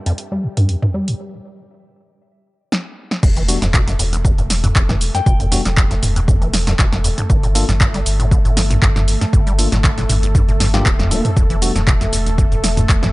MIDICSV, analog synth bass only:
0, 0, Header, 1, 2, 480
1, 0, Start_track
1, 0, Tempo, 508475
1, 1129, Time_signature, 4, 2, 24, 8
1, 12389, End_track
2, 0, Start_track
2, 0, Title_t, "Analog synth bass"
2, 0, Program_c, 0, 38
2, 3049, Note_on_c, 0, 28, 100
2, 3373, Note_off_c, 0, 28, 0
2, 3417, Note_on_c, 0, 28, 106
2, 3730, Note_off_c, 0, 28, 0
2, 3769, Note_on_c, 0, 28, 98
2, 4093, Note_off_c, 0, 28, 0
2, 4138, Note_on_c, 0, 28, 98
2, 4450, Note_off_c, 0, 28, 0
2, 4489, Note_on_c, 0, 28, 88
2, 4813, Note_off_c, 0, 28, 0
2, 4969, Note_on_c, 0, 28, 97
2, 5293, Note_off_c, 0, 28, 0
2, 5337, Note_on_c, 0, 28, 100
2, 5650, Note_off_c, 0, 28, 0
2, 5689, Note_on_c, 0, 28, 100
2, 6013, Note_off_c, 0, 28, 0
2, 6057, Note_on_c, 0, 28, 99
2, 6370, Note_off_c, 0, 28, 0
2, 6408, Note_on_c, 0, 28, 86
2, 6733, Note_off_c, 0, 28, 0
2, 6889, Note_on_c, 0, 31, 98
2, 7213, Note_off_c, 0, 31, 0
2, 7258, Note_on_c, 0, 31, 102
2, 7571, Note_off_c, 0, 31, 0
2, 7609, Note_on_c, 0, 31, 100
2, 7933, Note_off_c, 0, 31, 0
2, 7978, Note_on_c, 0, 31, 97
2, 8291, Note_off_c, 0, 31, 0
2, 8329, Note_on_c, 0, 31, 87
2, 8653, Note_off_c, 0, 31, 0
2, 8809, Note_on_c, 0, 31, 100
2, 9133, Note_off_c, 0, 31, 0
2, 9178, Note_on_c, 0, 31, 105
2, 9491, Note_off_c, 0, 31, 0
2, 9530, Note_on_c, 0, 31, 101
2, 9853, Note_off_c, 0, 31, 0
2, 9896, Note_on_c, 0, 31, 97
2, 10210, Note_off_c, 0, 31, 0
2, 10250, Note_on_c, 0, 26, 102
2, 10573, Note_off_c, 0, 26, 0
2, 10730, Note_on_c, 0, 28, 101
2, 11053, Note_off_c, 0, 28, 0
2, 11095, Note_on_c, 0, 28, 101
2, 11409, Note_off_c, 0, 28, 0
2, 11448, Note_on_c, 0, 28, 100
2, 11773, Note_off_c, 0, 28, 0
2, 11817, Note_on_c, 0, 28, 97
2, 12130, Note_off_c, 0, 28, 0
2, 12169, Note_on_c, 0, 28, 87
2, 12389, Note_off_c, 0, 28, 0
2, 12389, End_track
0, 0, End_of_file